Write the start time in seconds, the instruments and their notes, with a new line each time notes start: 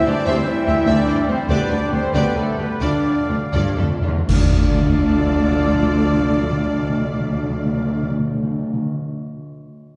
Already playing: trombone section E3 G3, clarinet E5, oboe G5
0.05 cello section D2, double bass section D2, viola section C4, french horn section D4, violin section G4 D5, flute section D5, trumpet section D5
0.25 double bass section D2, cello section D2, viola section C4 G4, french horn section C4, violin section C5 E5, flute section C5, trumpet section C5, clarinet E5, oboe G5
0.47 french horn section E4, violin section E5, flute section E5, trumpet section E5
0.66 double bass section D2, cello section D2, viola section C4, french horn section E4, violin section G4 E5, flute section E5, trumpet section E5
0.86 double bass section D2, cello section D2, viola section C4 G4, french horn section D4, violin section D5 E5, flute section D5, trumpet section D5
1.07 double bass section D2, cello section D2, viola section C4 E4, violin section C5
1.28 double bass section D2, cello section D2, french horn section C4, viola section C4, violin section G4 C5, flute section C5, trumpet section C5
1.47 double bass section D2, cello section D2, trombone section D3, french horn section B3, viola section D4 G4, violin section B4 D5, flute section B4, trumpet section B4, clarinet D5, oboe G5
1.69 double bass section D2, cello section D2, french horn section D4, viola section D4, violin section B4 D5, trumpet section D5, flute section D5
1.91 cello section D2, double bass section D2, viola section B3 D4, french horn section C4, violin section G4 C5, flute section C5, trumpet section C5
2.13 double bass section D2, cello section D2, french horn section B3, viola section D4 G4, violin section B4 D5, flute section B4, trumpet section B4, clarinet D5, oboe G5
2.34 double bass section D2, cello section D2, french horn section A3, viola section D4, violin section A4 B4, trumpet section A4, flute section A4
2.58 cello section D2, double bass section D2, viola section B3 D4, french horn section B3, violin section G4 B4, trumpet section B4, flute section B4
2.81 double bass section D2, cello section D2, french horn section D4, viola section D4 F4, violin section D5, flute section D5, trumpet section D5, clarinet D5, oboe F5
2.91 timpani D3
3.00 timpani D3
3.17 timpani D3
3.27 cello section D2, double bass section D2, timpani D3, viola section A3 D4, violin section F4
3.35 timpani D3
3.45 timpani D3
3.53 double bass section D2, cello section G2, timpani D3, trombone section F3, viola section D4 F4, violin section D5
3.62 timpani D3
3.71 timpani D3
3.78 double bass section D2, cello section F2, timpani D3, viola section D4, violin section A4
3.90 timpani D3
4.00 double bass section D2, cello section E2, timpani D3, viola section A3 D4, violin section F4
4.09 timpani D3
4.18 timpani D3
4.27 double bass section D2, cello section D2, trombone section D3 F3, timpani D3, french horn section D4, viola section F4 A4, violin section D5, flute section D5, clarinet D5, trumpet section D5, oboe F5, concert bass drum, crash
4.36 timpani D3
4.44 timpani D3
4.51 timpani D3
4.59 timpani D3
4.66 timpani D3
4.74 timpani D3
4.81 timpani D3
4.89 timpani D3
4.98 timpani D3
5.06 timpani D3
5.13 timpani D3
5.21 timpani D3
5.29 timpani D3
5.37 timpani D3
5.44 timpani D3
5.51 timpani D3
5.58 timpani D3
5.67 timpani D3
5.74 timpani D3
5.82 timpani D3
5.90 timpani D3
5.98 timpani D3
6.06 timpani D3
6.14 timpani D3
6.22 timpani D3
6.29 timpani D3
6.36 timpani D3
6.43 timpani D3
6.51 timpani D3
6.59 timpani D3
6.67 timpani D3
6.74 timpani D3
6.82 timpani D3
6.90 timpani D3
6.97 timpani D3
7.05 timpani D3
7.13 timpani D3
7.20 timpani D3
7.28 timpani D3
7.35 timpani D3
7.43 timpani D3
7.50 timpani D3
7.58 timpani D3
7.65 timpani D3
7.73 timpani D3
7.80 timpani D3
7.88 timpani D3
7.95 timpani D3
8.03 timpani D3
8.11 timpani D3
8.19 timpani D3
8.27 timpani D3
8.35 timpani D3
8.43 timpani D3
8.51 timpani D3
8.58 timpani D3
8.66 timpani D3
8.74 timpani D3